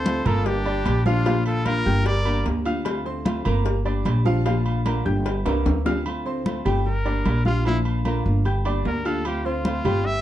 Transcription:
Already playing: upright bass D2, grand piano C4 C5 C6, flute A4, trumpet C5
0.05 nylon-string guitar D3 A3 C4 F4, cowbell, high conga, low timbale, low agogo
0.25 upright bass G1, nylon-string guitar A3 C4 F4, grand piano A#3 A#4 A#5, flute F4, trumpet A4, high conga, low conga, low agogo
0.46 flute D4, trumpet G4, muted nylon-string guitar stroke, cowbell, high conga
0.66 nylon-string guitar A#3 D4 G4, grand piano D4 D5 D6, high conga, low agogo
0.85 upright bass A#1, cowbell, high conga, low timbale, low agogo
1.06 grand piano F3 F4 F5, nylon-string guitar A#3 D4 G4, flute D4, trumpet F4, high conga
1.25 nylon-string guitar D3 A#3 D4 F4, grand piano F3 F4 F5, cowbell, low agogo
1.46 flute F4, trumpet A4, high conga, low agogo
1.65 nylon-string guitar D3 A#3 D4 F4, grand piano A#3 A#4 A#5, flute F4, trumpet A#4, cowbell, high conga, low timbale, low agogo
1.86 upright bass G1, nylon-string guitar A#3 D4 F4, grand piano G4 G5 G6
2.05 flute A#4, trumpet D5, muted nylon-string guitar stroke, cowbell, high conga, low agogo
2.25 grand piano A#3 A#4 A#5, nylon-string guitar A#3 D4 G4, high conga, low agogo
2.46 upright bass D2, cowbell, high conga, low timbale
2.65 nylon-string guitar A#3 D4 G4, grand piano F4 F5 F6, high conga, low agogo
2.85 nylon-string guitar D3 A3 C4 F4, cowbell, high conga, low agogo
3.05 grand piano C4 C5 C6, high conga
3.25 nylon-string guitar D3 A3 C4 F4, cowbell, high conga, low timbale, low agogo
3.44 upright bass G1, nylon-string guitar A3 C4 F4, grand piano A#3 A#4 A#5, high conga, low conga, low agogo
3.65 muted nylon-string guitar stroke, cowbell, high conga
3.85 nylon-string guitar A#3 D4 G4, grand piano D4 D5 D6, high conga, low agogo
4.05 upright bass A#1, cowbell, high conga, low timbale, low agogo
4.25 grand piano F3 F4 F5, nylon-string guitar A#3 D4 G4, high conga
4.45 nylon-string guitar D3 A#3 D4 F4, grand piano F3 F4 F5, cowbell, high conga, low agogo
4.66 high conga, low agogo
4.85 nylon-string guitar D3 A#3 D4 F4, grand piano A#3 A#4 A#5, cowbell, high conga, low timbale, low agogo
5.05 upright bass G1, nylon-string guitar A#3 D4 F4, grand piano G4 G5 G6, high conga
5.25 muted nylon-string guitar stroke, cowbell, high conga, low agogo
5.45 upright bass C2, grand piano A#3 A#4 A#5, nylon-string guitar A#3 D4 G4, high bongo, high conga, high timbale, low agogo
5.65 upright bass D2, cowbell, low bongo, high conga, high timbale
5.85 nylon-string guitar A#3 D4 G4, grand piano F4 F5 F6, low bongo, high conga, low timbale, low agogo
6.05 nylon-string guitar D3 A3 C4 F4, high conga, low agogo
6.26 grand piano C4 C5 C6, high conga
6.45 nylon-string guitar D3 A3 C4 F4, high conga, low timbale, low agogo
6.65 upright bass G1, grand piano G3 G4 G5, nylon-string guitar A3 C4 F4, high conga, low conga, low agogo
6.86 trumpet A#4, muted nylon-string guitar stroke, high conga
7.05 nylon-string guitar A#3 D4 G4, grand piano D4 D5 D6, high conga, low agogo
7.26 upright bass A#1, high conga, low timbale, low agogo
7.45 nylon-string guitar A#3 D4 G4, grand piano F4 F5 F6, trumpet F4, high conga
7.65 nylon-string guitar D3 A#3 D4 F4, grand piano F3 F4 F5, trumpet E4, high conga, low agogo
7.85 high conga, low agogo
8.05 nylon-string guitar D3 A#3 D4 F4, grand piano A#3 A#4 A#5, high conga, low timbale, low agogo
8.25 upright bass G1, nylon-string guitar A#3 D4 F4, high conga
8.45 grand piano G4 G5 G6, muted nylon-string guitar stroke, high conga, low agogo
8.65 nylon-string guitar A#3 D4 G4, grand piano D4 D5 D6, high conga, low agogo
8.85 upright bass D2, trumpet A#4, high conga, low timbale
9.05 nylon-string guitar A#3 D4 G4, grand piano F4 F5 F6, trumpet A4, high conga, low agogo
9.25 nylon-string guitar D3 A3 C4 F4, trumpet G4, high conga, low agogo
9.45 grand piano C4 C5 C6, trumpet F4, high conga
9.65 nylon-string guitar D3 A3 C4 F4, high conga, low timbale, low agogo
9.85 upright bass G1, grand piano G3 G4 G5, nylon-string guitar A3 C4 F4, high conga, low conga, low agogo
10.05 trumpet E5, muted nylon-string guitar stroke, high conga

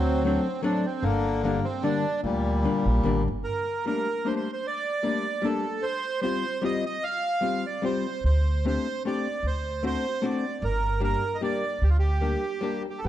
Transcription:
Already playing: upright bass D2, bandoneon F#3 C4
0.24 hollow-body jazz guitar F#3 A3 C4 D4, bandoneon C4
0.63 hollow-body jazz guitar F#3 A3 C4 D4, bandoneon D4
0.85 bandoneon C4
1.02 upright bass G1, bandoneon D3 A#3
1.43 hollow-body jazz guitar D3 G3 A#3 D4, bandoneon A#3
1.64 bandoneon C4
1.83 hollow-body jazz guitar D3 G3 A#3 D4, bandoneon D4
2.23 upright bass D2, bandoneon A#2 G3
2.63 hollow-body jazz guitar D3 G3 A#3 D4
2.86 upright bass A#1
3.03 upright bass A1, hollow-body jazz guitar D3 G3 A#3 D4
3.28 upright bass G1
3.44 bandoneon A#4
3.86 hollow-body jazz guitar G3 A3 A#3 D4, bandoneon A#4
4.25 hollow-body jazz guitar G3 A3 A#3 D4, bandoneon C5
4.36 bandoneon C5
4.53 bandoneon C5
4.67 bandoneon D5
5.03 hollow-body jazz guitar G3 A3 A#3 D4
5.42 hollow-body jazz guitar G3 A3 A#3 D4, bandoneon A4
5.83 bandoneon C5
6.21 hollow-body jazz guitar G3 C4 F4 G4, bandoneon C5
6.62 hollow-body jazz guitar G3 C4 F4 G4, bandoneon D#5
6.86 bandoneon D#5
7.04 bandoneon F5
7.41 hollow-body jazz guitar G3 C4 F4 G4
7.66 bandoneon D5
7.82 hollow-body jazz guitar G3 C4 F4 G4, bandoneon C5
8.24 upright bass D2, bandoneon C5
8.65 hollow-body jazz guitar A3 C4 D4 G4, bandoneon C5
9.05 hollow-body jazz guitar A3 C4 D4 G4, bandoneon D5
9.43 upright bass D2, bandoneon C5
9.83 hollow-body jazz guitar A3 C4 D4 F#4, bandoneon C5
10.22 hollow-body jazz guitar A3 C4 D4 F#4, bandoneon D5
10.62 upright bass G1, bandoneon A#4
11.00 hollow-body jazz guitar G3 A#3 D4 G4, bandoneon A#4
11.35 bandoneon D#5
11.41 hollow-body jazz guitar G3 A#3 D4 G4, bandoneon D5
11.82 upright bass D2, bandoneon G4
11.90 bandoneon F4
11.99 bandoneon G4
12.21 hollow-body jazz guitar G3 A#3 D4 G4
12.61 hollow-body jazz guitar G3 A#3 D4 G4
12.90 bandoneon G4
12.98 bandoneon A4
13.04 upright bass G1, bandoneon B3

